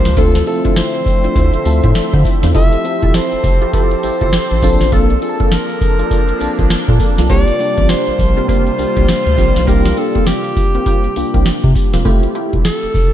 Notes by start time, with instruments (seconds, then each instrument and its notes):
Already playing: analog synth pad A#2 C3 F3 G3 D4, fm electric piano A#3 D4 F4 G4, alto saxophone C5
0.05 analog synth bass C#2, snare, closed hi-hat
0.17 analog synth bass D2, analog synth pad D3 A3 C4 E5, fm electric piano C4 E4 F4 A4, analog polysynth D4 E4 F4 C5, alto saxophone A4, kick, closed hi-hat, tambourine
0.35 snare, closed hi-hat
0.46 fm electric piano C4 E4 F4 A4, alto saxophone A4, closed hi-hat
0.64 analog synth bass D2, analog polysynth D4 E4 F4 C5, kick, closed hi-hat
0.76 alto saxophone C5, snare, closed hi-hat, tambourine
0.94 closed hi-hat
1.06 kick, open hi-hat, tambourine
1.24 analog polysynth D4 E4 F4 C5, closed hi-hat
1.35 analog synth bass D2, analog polysynth D4 E4 F4 C5, kick, closed hi-hat, tambourine
1.54 closed hi-hat
1.65 analog synth bass D2, fm electric piano C4 E4 F4 A4, closed hi-hat, tambourine
1.83 analog synth bass A2, analog polysynth D4 E4 F4 C5, kick, closed hi-hat
1.95 snare, closed hi-hat, tambourine
2.13 analog synth bass D3, analog polysynth D4 E4 F4 C5, kick, closed hi-hat
2.25 kick, open hi-hat, tambourine
2.43 analog synth bass E2, analog polysynth D4 E4 F4 C5, snare, closed hi-hat
2.54 analog synth bass F1, analog synth pad F3 C4 G4 A4, fm electric piano C4 E4 G4 A4, analog polysynth E4 F4 G4 A4, alto saxophone E5, kick, closed hi-hat, tambourine
2.73 closed hi-hat
2.84 fm electric piano C4 E4 G4 A4, closed hi-hat
3.02 analog synth bass E1, analog polysynth E4 F4 G4 A4, kick, closed hi-hat
3.14 alto saxophone C5, snare, closed hi-hat, tambourine
3.32 analog synth bass F1, closed hi-hat
3.44 analog synth bass F1, kick, open hi-hat, tambourine
3.61 analog polysynth E4 F4 G4 A4, closed hi-hat
3.73 analog polysynth E4 F4 G4 A4, alto saxophone C5, kick, closed hi-hat, tambourine
3.91 closed hi-hat
4.03 analog synth bass G1, fm electric piano C4 E4 G4 A4, closed hi-hat, tambourine
4.21 analog synth bass G1, analog polysynth E4 F4 G4 A4, kick, closed hi-hat
4.33 snare, closed hi-hat, tambourine
4.51 analog synth bass A1, closed hi-hat
4.62 analog synth bass A#1, analog synth pad F3 A#3 D4, analog polysynth A#3 D4 F4 A4, fm electric piano C4 D4 F4 A4, kick, open hi-hat, tambourine
4.81 analog synth bass A1, snare, closed hi-hat
4.92 analog synth bass A#1, analog polysynth A#3 D4 F4 A4, alto saxophone A4, kick, closed hi-hat, tambourine
5.10 closed hi-hat
5.22 fm electric piano C4 D4 F4 G#4, alto saxophone A4, closed hi-hat
5.29 fm electric piano A5
5.40 analog synth bass A#1, analog polysynth A#3 D4 F4 A4, kick, closed hi-hat
5.52 alto saxophone A#4, snare, closed hi-hat, tambourine
5.70 closed hi-hat
5.81 kick, open hi-hat, tambourine
5.99 analog polysynth A#3 D4 F4 A4, closed hi-hat
6.11 analog polysynth A#3 D4 F4 A4, kick, closed hi-hat, tambourine
6.29 closed hi-hat
6.40 analog synth bass A#1, fm electric piano C4 D4 F4 A5, closed hi-hat, tambourine
6.59 analog synth bass A#1, analog polysynth A#3 D4 F4 A4, kick, closed hi-hat
6.70 snare, closed hi-hat, tambourine
6.88 analog synth bass A#2, analog polysynth A#3 D4 F4 A4, kick, closed hi-hat
7.00 kick, open hi-hat, tambourine
7.18 analog synth bass B1, analog polysynth A#3 D4 F4 A4, snare, closed hi-hat
7.29 analog synth bass C2, analog synth pad C3 G3 F4, analog polysynth A#3 C4 F4 G4, fm electric piano A#3 D4 F4 G4, alto saxophone D5, kick, closed hi-hat, tambourine
7.48 closed hi-hat
7.59 fm electric piano A#3 D4 F4 G4, closed hi-hat
7.77 analog synth bass A1, analog polysynth A#3 C4 F4 G4, kick, closed hi-hat
7.89 alto saxophone C5, snare, closed hi-hat, tambourine
8.07 analog synth bass A#1, closed hi-hat
8.19 analog synth bass A#1, kick, open hi-hat, tambourine
8.37 analog polysynth A#3 C4 F4 G4, closed hi-hat
8.48 analog polysynth A#3 C4 F4 G4, alto saxophone C5, kick, closed hi-hat, tambourine
8.67 closed hi-hat
8.78 analog synth bass C2, fm electric piano A#3 D4 F4 G4, closed hi-hat, tambourine
8.96 analog synth bass C2, analog polysynth A#3 C4 F4 G4, kick, closed hi-hat
9.08 snare, closed hi-hat, tambourine
9.26 analog synth bass D2, closed hi-hat
9.37 analog synth bass A#1, analog polysynth A#3 C4 F4 G4, kick, open hi-hat, tambourine
9.56 analog synth bass B1, snare, closed hi-hat
9.67 analog synth bass C2, analog polysynth A#3 C4 F4 G4, fm electric piano A#3 D4 F4 G4, alto saxophone A#4, kick, closed hi-hat, tambourine
9.85 snare, closed hi-hat
9.97 fm electric piano A#3 D4 F4 G4, alto saxophone A4, closed hi-hat
10.15 analog synth bass C2, analog polysynth A#3 C4 F4 G4, kick, closed hi-hat
10.27 alto saxophone G4, snare, closed hi-hat, tambourine
10.44 closed hi-hat
10.56 kick, open hi-hat, tambourine
10.75 analog polysynth A#3 C4 F4 G4, closed hi-hat
10.86 analog polysynth A#3 C4 F4 G4, kick, closed hi-hat, tambourine
11.04 closed hi-hat
11.16 analog synth bass C2, fm electric piano A#3 D4 F4 G4, closed hi-hat, tambourine
11.34 analog synth bass C2, analog polysynth A#3 C4 F4 G4, kick, closed hi-hat
11.46 snare, closed hi-hat, tambourine
11.64 analog synth bass C3, kick, closed hi-hat
11.75 kick, open hi-hat, tambourine
11.93 analog synth bass E1, analog polysynth A#3 C4 F4 G4, snare, closed hi-hat
12.05 analog synth bass F1, analog polysynth A3 E4 F4 G4, fm electric piano A3 C4 E4 G4, kick, closed hi-hat
12.23 closed hi-hat
12.35 analog polysynth A3 E4 F4 G4, closed hi-hat
12.53 analog synth bass E1, kick, closed hi-hat
12.65 alto saxophone A4, snare, closed hi-hat
12.83 analog synth bass F1, closed hi-hat
12.94 analog synth bass F1, kick, open hi-hat